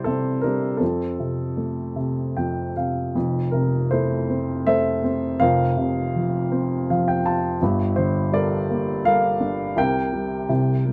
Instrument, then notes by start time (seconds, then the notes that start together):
upright piano
Already playing: C3 G3 E4 G4 C5 D5
0.04 C3 C4 A4
0.41 G3 D4 A#4
0.77 F2 C4 A4
1.20 C3
1.57 A3
1.96 C3
2.37 F2 G5
2.77 C3 F5
3.15 F1 F2
3.51 C3 A#4
3.91 A3 E4 A4 C5
4.30 C4
4.67 A3 A4 C5 E5
5.04 C4
5.40 F1 F2 A#4 C5 F5
5.77 C3
6.16 F3
6.52 C4
6.90 F3 F5
7.08 G5
7.25 F4 A5
7.62 G1 G2
7.96 D3 C5
8.32 G3 A4 A#4 D5
8.70 A#3
9.05 G3 A4 A#4 F5
9.40 D4
9.76 C2 C3 A#4 G5
10.13 G3
10.49 C2 C3
10.86 G3